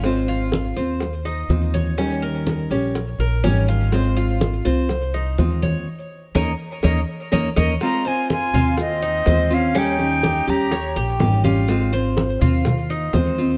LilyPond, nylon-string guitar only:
\new Staff \with { instrumentName = "Nylon-string guitar" } { \time 4/4 \key aes \major \tempo 4 = 124 <aes c' f'>4. <c' f'>8 r4 <aes c' f'>4 | <ees g des' g'>4. <g des' g'>8 r4 <ees g des' g'>4 | <aes c' f'>4. <c' f'>8 r4 <aes c' f'>4 | r4 <bes des' ees'>8 r8 <bes des' ees'>8 r8 <bes des' ees'>8 <bes des' ees'>8 |
<aes c' f'>8 <c' f'>4 <c' f'>8 r4 <aes c' f'>8 <c' f'>8 | <ees g des' g'>8 <g des' g'>4 <g des' g'>8 r4 <ees g des' g'>8 <g des' g'>8 | <aes c' f'>8 <c' f'>4 <c' f'>8 r4 <aes c' f'>8 <c' f'>8 | }